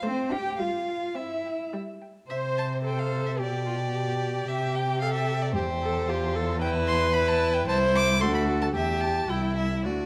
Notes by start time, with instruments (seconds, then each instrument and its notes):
0.03 viola A3, cello C4, violin C5
0.32 cello G4, violin F5 G5
0.59 viola G3, cello F4, violin F5
0.89 violin G5
1.15 viola C4, cello E4, violin E5
1.46 violin G5
1.74 viola G3
2.02 violin G5
2.29 cello C3, viola C5, violin C5 E5
2.58 violin A5
2.85 viola A4, violin C5 G5
2.98 violin F5
3.26 violin E5
3.38 cello B2, viola G4, violin G4 D5
3.66 viola F4
3.94 viola G4
4.48 cello C3, violin G4 E5
4.75 violin G5
5.01 viola A4, violin F5
5.14 violin E5
5.42 violin D5
5.54 cello E2, violin G4 C5, viola G4
5.83 viola A4
6.08 violin F4, viola G4
6.36 viola A4
6.61 violin E4 G5, viola B4
6.87 violin C6
7.13 violin E4 B5
7.28 violin A5
7.54 violin G5
7.68 cello C2, violin E4 A5, viola C5
7.95 violin D6
8.21 cello D2, violin F#4 C6, viola A4
8.34 violin B5
8.62 violin A5
8.75 cello E2, violin G4 E5, viola G4
9.01 violin A5
9.29 cello C2, violin E4 G5, viola E4
9.56 violin E5
9.85 cello D2, viola F#4, violin F#4 D5